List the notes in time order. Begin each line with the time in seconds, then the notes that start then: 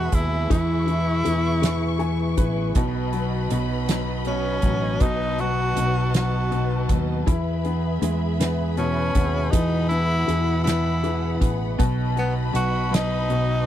Already playing: B2 E3 G#3 B3 E4 F#4 G#4 B4 E5 B5
0.12 D#2 B3 E4 G#4, kick, closed hi-hat
0.50 E2 E3 B3 E4 G#4 C#6, kick, closed hi-hat
0.87 E3 B3 G#4, closed hi-hat
1.25 E2 E3 B3 E4 G#4, closed hi-hat
1.62 E3 B3 E4 G#4, snare, closed hi-hat
1.99 E3 B3 E4 G#4 G#5, closed hi-hat
2.37 A1 E3 B3 E4 G#4 B4, kick, closed hi-hat
2.75 B1 B2 F#3 B3 D#4 F#4 D#5 B5, kick, closed hi-hat
3.13 F#3 B3 D#4 F#4, closed hi-hat
3.50 B1 B2 F#3 B3 D#4 F#4, closed hi-hat
3.88 B2 F#3 B3 D#4 F#4, snare, closed hi-hat
4.25 B2 F#3 B3 C#4 D#4 F#4, closed hi-hat
4.62 A1 F#3 B3 D#4 F#4, kick, closed hi-hat
5.00 B1 B2 F#3 B3 D#4 F#4 A5, kick, closed hi-hat
5.38 F#3 B3 D#4 F#4, closed hi-hat
5.75 B1 B2 F#3 B3 D#4 F#4, closed hi-hat
6.14 B2 F#3 B3 D#4 F#4, snare, closed hi-hat
6.51 B2 F#3 B3 D#4 F#4, closed hi-hat
6.89 D#2 F#3 B3 D#4 F#4, kick, closed hi-hat
7.26 E2 E3 B3 E4 G#4 E5 B5, kick, closed hi-hat
7.64 B3 E4 G#4, closed hi-hat
8.02 E2 E3 G#3 B3 E4 G#4, closed hi-hat
8.40 E3 B3 E4 G#4, snare, closed hi-hat
8.77 B2 E3 B3 C#4 E4 G#4, closed hi-hat
9.15 D#2 B3 E4 G#4, kick, closed hi-hat
9.51 E2 E3 B3 D#4 G#4 F#5, kick, closed hi-hat
9.89 B3 E4 G#4, closed hi-hat
10.27 E2 E3 B3 E4 G#4, closed hi-hat
10.64 E3 B3 E4 G#4, snare, closed hi-hat
11.03 E3 B3 E4 G#4, closed hi-hat
11.41 A1 B3 E4 G#4, kick, closed hi-hat
11.78 B1 B2 F#3 B3 D#4 F#4 B4 D#5 B5, kick, closed hi-hat
12.15 F#3 B3 D#4 F#4, closed hi-hat
12.53 B1 B2 F#3 B3 D#4 F#4, closed hi-hat
12.91 B2 F#3 B3 D#4 F#4, snare, closed hi-hat
13.28 B2 F#3 B3 D#4 F#4, closed hi-hat